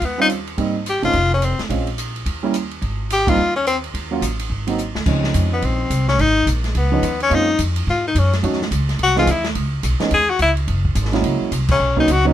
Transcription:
0.02 upright bass D#2, tenor saxophone B3, kick, ride
0.18 grand piano G3 C4 C#4 F4, tenor saxophone D#4
0.30 hi-hat pedal, ride
0.47 ride
0.57 upright bass G#1, grand piano G3 A#3 C4 D#4, kick, ride
0.86 tenor saxophone G4, hi-hat pedal, ride
1.02 upright bass E1, grand piano A3 C4 C#4 D#4, tenor saxophone F4, ride
1.13 upright bass F1, kick, ride
1.34 tenor saxophone C#4
1.42 tenor saxophone C4, hi-hat pedal, ride
1.59 muted upright bass stroke, snare, ride
1.69 upright bass A#1, grand piano G#3 C4 C#4 F4, kick, ride
1.87 ride
1.98 hi-hat pedal, ride
2.16 ride
2.26 upright bass D#2, kick, ride
2.43 grand piano G3 A#3 C#4 E4
2.54 hi-hat pedal, ride
2.71 ride
2.82 upright bass G#1, kick, ride
3.10 tenor saxophone G4, hi-hat pedal, ride
3.26 grand piano G3 A#3 C4 D#4, tenor saxophone F4, kick, ride
3.37 upright bass D#2
3.56 tenor saxophone C#4
3.67 tenor saxophone C4, hi-hat pedal, ride
3.84 ride
3.94 upright bass D#2, kick, ride
4.11 grand piano F#3 A#3 C#4 F4
4.21 upright bass A1, hi-hat pedal, ride
4.39 ride
4.50 upright bass G#1, kick
4.67 grand piano F#3 A#3 C4 D#4, ride
4.78 hi-hat pedal
4.95 upright bass D2, snare
5.06 upright bass C#2, grand piano F3 G#3 C4 C#4 D#4, kick, crash
5.24 snare
5.34 upright bass F2, kick, hi-hat pedal, ride
5.53 tenor saxophone B3
5.62 upright bass A#1, tenor saxophone C4, kick, ride
5.90 upright bass C2, kick, hi-hat pedal, ride
6.08 tenor saxophone C#4, snare
6.19 upright bass G#1, tenor saxophone D#4, kick, ride
6.47 upright bass A#1, kick, hi-hat pedal, ride
6.64 tenor saxophone G#3, snare, ride
6.75 upright bass C#2, tenor saxophone B3, kick, ride
6.92 grand piano F3 G#3 B3 C#4 D#4
7.02 upright bass D#2, kick, hi-hat pedal, ride
7.20 tenor saxophone C#4, ride
7.30 upright bass F#2, grand piano G#3 A#3 C4 C#4 F4, kick, ride
7.34 tenor saxophone D#4
7.59 upright bass F2, kick, hi-hat pedal, ride
7.76 ride
7.87 upright bass G#2, tenor saxophone F4, kick
8.07 tenor saxophone D#4
8.15 upright bass F#2, tenor saxophone C#4, kick, hi-hat pedal, ride
8.33 snare, ride
8.43 upright bass D#2, grand piano F#3 A3 C#4 D#4 F#4, kick, ride
8.53 snare
8.62 snare
8.71 upright bass C#2, kick, hi-hat pedal, ride
8.89 snare, ride
8.99 upright bass C2, kick, ride
9.03 tenor saxophone F#4
9.16 grand piano E3 G#3 C4 D#4 G#4, tenor saxophone F4, snare
9.27 upright bass D#2, kick, hi-hat pedal, ride
9.31 tenor saxophone E4
9.44 snare, ride
9.55 upright bass C#2, kick, ride
9.83 upright bass B1, kick, hi-hat pedal, ride
10.00 grand piano E3 G#3 B3 C#4 D#4, snare, ride
10.11 upright bass D#2, tenor saxophone G#4, kick, ride
10.30 tenor saxophone F#4
10.39 upright bass C#2, tenor saxophone E4, kick, hi-hat pedal, ride
10.57 ride
10.68 upright bass F#1, kick, ride
10.85 kick
10.95 upright bass G#1, kick, hi-hat pedal, ride
11.05 snare
11.12 grand piano F#3 G#3 A#3 C#4 E4, snare, ride
11.24 upright bass C#2, kick, ride
11.41 muted upright bass stroke
11.52 upright bass C2, kick, hi-hat pedal, ride
11.69 tenor saxophone C#4, kick, crash
11.80 upright bass B1
11.96 grand piano F#3 A#3 B3 C#4 D#4, tenor saxophone D#4, kick
12.07 upright bass C#2, kick, hi-hat pedal, ride
12.11 tenor saxophone F#4
12.25 grand piano F#3 A#3 B3 C#4 D#4, tenor saxophone B3

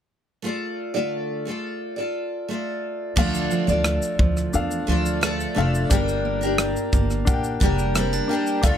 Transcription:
0.42 steel-string acoustic guitar A3 F4 A4 D5
0.94 steel-string acoustic guitar D3 A3 F4 A4 D5
1.45 steel-string acoustic guitar A3 F4 A4 D5
1.96 steel-string acoustic guitar F4 A4 D5
2.48 steel-string acoustic guitar A3 F4 A4 D5
3.16 upright bass D2, steel-string acoustic guitar D3 F3 A3 F4 A4 D5, grand piano D4 A4 F5, kick, crash
3.34 shaker
3.51 steel-string acoustic guitar F3, shaker
3.67 upright bass D2, steel-string acoustic guitar F4 A4 D5, shaker
3.84 steel-string acoustic guitar A3, cross-stick, shaker
4.02 shaker
4.19 upright bass D2, steel-string acoustic guitar F3, kick
4.37 cross-stick, shaker
4.53 upright bass E2, grand piano D4 A4 F5, steel-string acoustic guitar D4, shaker
4.71 shaker
4.87 upright bass D2, steel-string acoustic guitar F3 A3 F4 A4 D5
5.06 shaker
5.21 steel-string acoustic guitar A3 F4 A4 D5, cross-stick, shaker
5.40 shaker
5.55 upright bass F1, steel-string acoustic guitar A3 D4 F4 A4 D5, grand piano D4 A4 F5
5.75 shaker
5.90 upright bass G1, steel-string acoustic guitar G3 A#3 D4 G4 A#4, grand piano D4 A#4 G5, kick, shaker
6.08 shaker
6.25 steel-string acoustic guitar A#3
6.41 steel-string acoustic guitar D4 G4 A#4, shaker
6.58 steel-string acoustic guitar D4, cross-stick, shaker
6.76 shaker
6.93 upright bass G1, steel-string acoustic guitar A#3, kick, shaker
7.10 cross-stick, shaker
7.25 upright bass A#1, grand piano D4 A#4 F#5, steel-string acoustic guitar G4, kick, shaker
7.34 grand piano G5
7.44 shaker
7.60 upright bass F1, steel-string acoustic guitar G3 A#3 D4 G4 A#4, kick, shaker
7.79 shaker
7.95 steel-string acoustic guitar G3 C4 D4 G4 A#4, cross-stick, shaker
8.13 steel-string acoustic guitar D4, shaker
8.28 steel-string acoustic guitar G3 D4 G4, grand piano D4 A#4 G5
8.33 steel-string acoustic guitar A#4
8.47 shaker
8.62 upright bass D2, steel-string acoustic guitar D3 A3 D4 F4 A4, grand piano D4 A4 F5, kick, shaker

